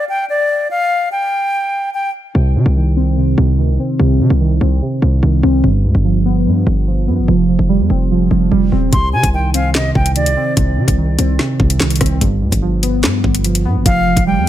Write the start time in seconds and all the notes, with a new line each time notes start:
0.09 G5
0.29 D5
0.71 F5
1.12 G5
1.94 G5
2.35 C2 C3
2.56 C3
2.66 C2
2.76 D#3
2.97 C4
3.17 C3
3.38 C2 C3
3.58 D2 D#3
3.69 C2
3.79 C4
3.99 C2 C3
4.20 C3
4.30 C2
4.41 D#3
4.61 C2 C4
4.82 C3
5.02 C2 C3
5.23 C2 D#3
5.43 C2 C4
5.64 G1 G2
5.84 D2 G2
5.95 G1
6.04 F3
6.25 B3
6.46 G2
6.66 G1 G2
6.87 F3
7.08 G2 B3
7.18 G1
7.28 F1 F3
7.49 F3
7.59 F1
7.69 G3
7.80 F2
7.90 F1 C4
8.11 F3
8.31 F1 F3
8.51 F1 G3
8.72 D#1 C4
8.92 C2 C3 C6, kick, closed hi-hat
9.13 C3 G#5
9.23 C2, kick, closed hi-hat
9.33 D#3 G5
9.54 C4 F5, closed hi-hat
9.75 C3 D#5, snare, clap
9.95 C2 C3 G5, kick
10.06 closed hi-hat
10.16 D2 D#3 D5, closed hi-hat
10.26 C2, closed hi-hat
10.37 C4
10.57 C2 C3, kick, closed hi-hat
10.77 C3
10.88 C2, kick, closed hi-hat
10.98 D#3
11.19 C2 C4, closed hi-hat
11.39 C3, snare
11.60 C2 C3, kick
11.70 closed hi-hat
11.80 C2 D#3, snare, clap
11.90 closed hi-hat
11.96 closed hi-hat
12.01 C2 C4, kick, cross-stick, closed hi-hat
12.06 closed hi-hat
12.21 G1 G2, kick, closed hi-hat
12.42 D2 G2
12.52 G1, kick, closed hi-hat
12.62 F3
12.83 B3, closed hi-hat
13.04 G2, snare, clap
13.24 G1 G2, kick
13.35 closed hi-hat
13.44 F3, closed hi-hat
13.55 closed hi-hat
13.65 G2 B3
13.75 G1
13.86 F1 F3 F5, kick, closed hi-hat
14.07 F3
14.17 F1, kick, closed hi-hat
14.26 G3 G5
14.37 F2